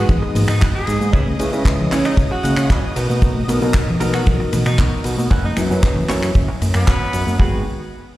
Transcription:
Already playing: D#5 D#6
0.08 G#1 G#3 B3 D#4 F#4, kick, ride, low conga, cabasa, shaker
0.22 muted clean electric guitar stroke, shaker
0.35 G#2, muted clean electric guitar stroke, open hi-hat, ride, high conga, low conga, cabasa, shaker
0.48 G#2 D#4, finger snap, cabasa, shaker
0.61 G#1 D#4 F#4 G#4 B4, kick, clap, ride, cabasa, shaker
0.75 G#4, shaker
0.87 G#2, open hi-hat, ride, cabasa
1.01 G#2, high conga, cabasa, shaker
1.13 C#2 C#4 E4 G#4 B4, kick, ride, cabasa, shaker
1.26 high conga, shaker
1.39 C#3 G#3 C#4 E4 B4, muted clean electric guitar stroke, open hi-hat, ride, cabasa, shaker
1.52 C#3 G#3 C#4 E4 B4, cabasa, shaker
1.65 C#2, muted clean electric guitar stroke, kick, clap, ride, cabasa, shaker
1.79 muted clean electric guitar stroke, low conga, shaker
1.91 C#3 G#3 C#4 E4 G#4 C#5, clap, open hi-hat, ride, high conga, cabasa, shaker
2.05 D#4, finger snap, cabasa, shaker
2.17 C#2, kick, ride, cabasa, shaker
2.31 F#4, muted clean electric guitar stroke, shaker
2.43 C#3 F#5, muted clean electric guitar stroke, open hi-hat, ride, high conga, cabasa, shaker
2.56 C#3, finger snap, cabasa, shaker
2.70 C#2 C#4 E4 G#4 B4 D#5, kick, clap, ride, cabasa
2.83 shaker
2.96 B2 B3 D#4 F#4 A#4, open hi-hat, ride, cabasa
3.10 B2, high conga, cabasa, shaker
3.22 B1, kick, ride, cabasa, shaker
3.36 high conga, shaker
3.48 B2 F#3 B3 D#4 A#4, muted clean electric guitar stroke, open hi-hat, ride, cabasa, shaker
3.61 B2 F#3 B3 D#4 A#4, cabasa, shaker
3.74 B1, muted clean electric guitar stroke, kick, clap, ride, cabasa
3.88 muted clean electric guitar stroke, low conga, shaker
4.00 B2 F#3 B3 D#4 F#4 A#4, open hi-hat, ride, high conga, cabasa, shaker
4.14 F#4, finger snap, cabasa, shaker
4.26 B1 F#3 B3 D#4 A#4, kick, ride, low conga, cabasa, shaker
4.40 muted clean electric guitar stroke, shaker
4.52 B2, muted clean electric guitar stroke, open hi-hat, ride, high conga, low conga, cabasa, shaker
4.66 B2 D#4, finger snap, cabasa, shaker
4.78 B1 B3 D#4 F#4 A#4, kick, clap, ride, cabasa, shaker
4.93 shaker
5.04 B2, open hi-hat, ride, cabasa, shaker
5.18 B2, high conga, cabasa, shaker
5.31 F#1 C#4 E4 F#4 B4, kick, ride, cabasa, shaker
5.43 D#4, high conga, shaker
5.57 F#2 F#3 C#4 E4 B4, finger snap, muted clean electric guitar stroke, open hi-hat, ride, cabasa, shaker
5.70 F#2 F#3 C#4 E4 B4, cabasa
5.83 F#1, muted clean electric guitar stroke, kick, clap, ride, cabasa
5.96 muted clean electric guitar stroke, open hi-hat, low conga, shaker
6.08 F#2 F#3 C#4 E4 F#4 C#5, clap, open hi-hat, ride, high conga, cabasa, shaker
6.23 finger snap, cabasa
6.34 F#1, kick, ride, cabasa, shaker
6.48 muted clean electric guitar stroke, shaker
6.61 F#2, muted clean electric guitar stroke, open hi-hat, ride, high conga, cabasa, shaker
6.74 F#2 B3, finger snap, cabasa, shaker
6.87 F#1 C#4 E4 F#4 B4, kick, clap, ride, cabasa
7.01 shaker
7.13 F#2, open hi-hat, ride, cabasa, shaker
7.27 F#2, high conga, cabasa, shaker
7.38 G#1 D#3 G#3 B3 F#4 G#4 B4, kick

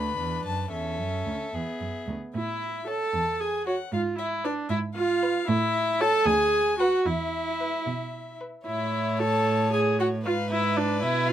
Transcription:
Already playing: D2 D4 B4 B5
0.18 E2
0.45 F#2 A5
0.72 E2 C#4 A4 E5
0.99 F#2
1.26 D2
1.54 E2 B3 G#4
1.80 F#2
2.07 D2
2.34 A2 E4 E5
2.87 A4 C#5 A5
3.14 E2
3.40 G#4 G#5
3.66 F#4 C#5 F#5
3.92 G#2 F4 F5
4.19 E4 E5
4.45 D4 B4 D5
4.69 G#2 E4 E5
4.95 F4 F5
5.23 B4
5.48 A2 E4 E5
6.00 A4 C#5 A5
6.26 D2 G#4 G#5
6.79 F#4 B4 F#5
7.06 E2 E4 E5
7.60 B4
7.86 B2
8.41 B4
8.67 A2 E4 C#5 E5
9.20 A4 A5
9.73 G#4 G#5
10.00 F#4 F#5
10.25 G#2 F4 B4 F5
10.51 E4 E5
10.77 D4 D5
11.03 B2 E4 E5
11.28 F4 F5

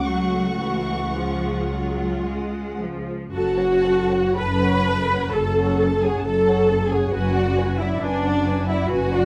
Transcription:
Already playing: C#2 F#5
0.05 F#3 A3 F#4 C#6
0.61 E3
1.16 F3 G#3 F4
1.72 F#3
2.27 G#3
2.80 F3
3.33 F#1 F#2 F#4 A4 F#5 A5
3.58 C#5 F#5
3.84 A4 A5
4.12 C#5 F#5
4.37 F#1 F#2 A4 B4 A5 B5
4.63 C#5 F#5
4.87 A4 A5
5.13 C#5 F#5
5.31 F#1 F#2 A4 A5
5.37 A4 A5
5.60 C#5 F#5
5.81 A4 A5
6.02 G#4 C#5 F#5 G#5
6.22 F#1 F#2 A4 A5
6.27 A4 A5
6.47 C#5 F#5
6.68 A4 A5
6.88 G#4 C#5 F#5 G#5
7.06 G#4
7.11 F#1 F#2 F#4 B4 F#5 G#5
7.35 D5 F#5
7.57 B4 G#5
7.77 E4 D5 E5 F#5
7.99 F#1 F#2 D4 B4 D5 G#5
8.25 D5 F#5
8.46 B4 G#5
8.67 E4 D5 E5 F#5
8.88 F#1 F#2 F#4 B4 F#5 G#5
9.12 D5 F#5

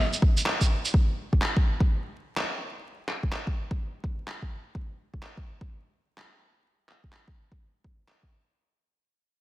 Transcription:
0.13 shaker
0.22 kick
0.37 shaker
0.46 clap
0.61 kick, shaker
0.85 shaker
0.94 kick
1.33 kick
1.42 clap
1.57 kick
1.80 kick
2.37 clap
3.09 clap
3.23 kick
3.32 clap
3.47 kick
3.71 kick
4.04 kick
4.28 clap
4.42 kick
4.75 kick
5.14 kick
5.23 clap
5.37 kick
5.61 kick
6.18 clap
6.89 clap
7.04 kick
7.12 clap
7.28 kick
7.52 kick
7.84 kick
8.08 clap
8.23 kick

